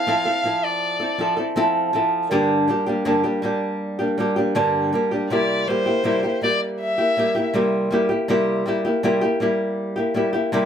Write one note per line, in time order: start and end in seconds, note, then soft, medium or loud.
0.00 0.66 F5 medium
0.07 0.26 F3 medium
0.07 0.26 C4 medium
0.07 0.25 E4 medium
0.07 0.24 A4 medium
0.25 0.43 C4 soft
0.25 0.44 E4 soft
0.25 0.44 A4 soft
0.44 1.00 F3 soft
0.44 1.01 C4 soft
0.44 1.00 E4 soft
0.44 0.99 A4 medium
0.65 1.39 D5 medium
1.00 1.18 C4 soft
1.00 1.18 E4 soft
1.00 1.19 A4 soft
1.18 1.38 F3 soft
1.18 1.38 C4 soft
1.18 1.37 E4 soft
1.18 1.36 A4 medium
1.37 1.55 C4 soft
1.37 1.56 E4 soft
1.37 1.56 A4 soft
1.56 1.92 F3 medium
1.56 1.93 C4 medium
1.56 1.94 E4 medium
1.56 1.94 A4 medium
1.93 2.31 F3 medium
1.93 2.31 C4 medium
1.93 2.31 E4 medium
1.93 2.32 A4 medium
2.31 2.68 G2 medium
2.31 2.69 D3 medium
2.31 2.66 G3 medium
2.31 2.67 A#3 medium
2.31 2.68 D4 medium
2.31 2.69 G4 medium
2.68 2.87 G3 medium
2.68 2.87 A#3 medium
2.68 2.86 D4 medium
2.68 2.85 G4 medium
2.86 3.04 G3 soft
2.86 3.05 A#3 soft
2.86 3.05 D4 soft
2.86 3.06 G4 soft
3.05 3.24 G2 medium
3.05 3.24 D3 medium
3.05 3.24 G3 medium
3.05 3.24 A#3 medium
3.05 3.23 D4 medium
3.05 3.22 G4 medium
3.24 3.41 G3 soft
3.24 3.42 A#3 soft
3.24 3.43 D4 soft
3.24 3.43 G4 medium
3.42 3.99 G3 medium
3.42 3.99 A#3 medium
3.42 3.99 D4 medium
3.42 3.98 G4 medium
3.99 4.16 G3 soft
3.99 4.18 A#3 soft
3.99 4.18 D4 soft
3.99 4.18 G4 medium
4.18 4.37 G3 medium
4.18 4.37 A#3 medium
4.18 4.36 D4 medium
4.18 4.35 G4 medium
4.36 4.54 G3 soft
4.36 4.55 A#3 soft
4.36 4.55 D4 soft
4.36 4.55 G4 soft
4.55 4.92 G2 medium
4.55 4.93 D3 medium
4.55 4.91 G3 medium
4.55 4.92 A#3 medium
4.55 4.93 D4 medium
4.55 4.93 G4 medium
4.93 5.11 G3 medium
4.93 5.12 A#3 medium
4.93 5.11 D4 medium
4.93 5.10 G4 medium
5.11 5.30 G3 soft
5.11 5.30 A#3 soft
5.11 5.31 D4 soft
5.11 5.30 G4 soft
5.30 5.67 C3 medium
5.30 5.66 G3 medium
5.30 5.67 A#3 medium
5.30 5.68 E4 medium
5.30 5.69 G4 medium
5.30 5.70 D5 medium
5.67 5.86 G3 medium
5.67 5.87 A#3 soft
5.67 5.86 E4 medium
5.67 5.85 G4 medium
5.67 6.43 C5 medium
5.86 6.03 A#3 soft
5.86 6.04 E4 soft
5.86 6.04 G4 medium
6.04 6.23 C3 medium
6.04 6.23 G3 medium
6.04 6.23 A#3 medium
6.04 6.23 E4 medium
6.04 6.22 G4 medium
6.23 6.41 A#3 soft
6.23 6.42 E4 soft
6.23 6.42 G4 soft
6.41 6.98 G3 soft
6.41 6.98 A#3 medium
6.41 6.98 E4 medium
6.41 6.97 G4 medium
6.41 6.60 D5 medium
6.80 7.50 E5 medium
6.98 7.16 A#3 soft
6.98 7.17 E4 soft
6.98 7.17 G4 soft
7.17 7.35 G3 soft
7.17 7.36 A#3 soft
7.17 7.35 E4 medium
7.17 7.34 G4 medium
7.35 7.54 A#3 soft
7.35 7.54 E4 soft
7.35 7.54 G4 soft
7.54 7.91 C3 medium
7.54 7.89 G3 medium
7.54 7.91 A#3 medium
7.54 7.91 E4 medium
7.54 7.92 G4 medium
7.91 8.10 G3 medium
7.91 8.10 A#3 medium
7.91 8.10 E4 medium
7.91 8.08 G4 medium
8.09 8.28 A#3 soft
8.09 8.29 E4 soft
8.09 8.28 G4 soft
8.28 8.66 C3 medium
8.28 8.64 G3 medium
8.28 8.65 A#3 medium
8.28 8.66 E4 medium
8.28 8.67 G4 medium
8.66 8.85 G3 medium
8.66 8.85 A#3 medium
8.66 8.85 E4 medium
8.66 8.83 G4 medium
8.85 9.03 A#3 soft
8.85 9.03 E4 soft
8.85 9.03 G4 soft
9.03 9.22 C3 medium
9.03 9.22 G3 medium
9.03 9.22 A#3 medium
9.03 9.21 E4 medium
9.03 9.20 G4 medium
9.21 9.40 A#3 soft
9.21 9.41 E4 soft
9.21 9.40 G4 medium
9.40 9.96 G3 medium
9.40 9.97 A#3 medium
9.40 9.96 E4 medium
9.40 9.95 G4 medium
9.96 10.14 A#3 soft
9.96 10.15 E4 soft
9.96 10.15 G4 soft
10.14 10.34 G3 medium
10.14 10.34 A#3 medium
10.14 10.33 E4 medium
10.14 10.32 G4 medium
10.33 10.52 A#3 soft
10.33 10.53 E4 medium
10.33 10.52 G4 medium
10.52 10.65 C3 medium
10.52 10.65 G3 medium
10.52 10.65 A#3 medium
10.52 10.65 E4 medium
10.52 10.65 G4 medium